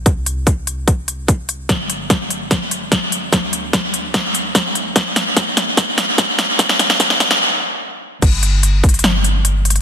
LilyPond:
<<
  \new Staff \with { instrumentName = "808-style bass" } { \clef bass \time 4/4 \key bes \lydian \tempo 4 = 147 c,1 | g,,1 | d,1 | bes,,1 |
c,2 r2 | g,,1 | }
  \new DrumStaff \with { instrumentName = "Drums" } \drummode { \time 4/4 <hh bd>8 hh8 <hh bd>8 hh8 <hh bd>8 hh8 <hh bd>8 hh8 | <hh bd sn>8 hh8 <hh bd sn>8 hh8 <hh bd sn>8 hh8 <hh bd sn>8 hh8 | <hh bd sn>8 hh8 <hh bd sn>8 hh8 <hh bd sn>8 hh8 <hh bd sn>8 hh8 | <hh bd sn>8 <hh sn>8 <hh bd sn>8 <hh sn>8 <hh bd sn>8 <hh sn>8 <hh bd sn>8 <hh sn>8 |
<hh bd sn>16 sn16 <hh sn>16 sn16 <hh bd sn>16 sn16 <hh sn>16 sn16 r4 r4 | <cymc hh bd>8 hh8 hh8 <hh bd>32 hh32 hh32 hh32 <hh sn>8 hh8 hh8 hh32 hh32 hh16 | }
>>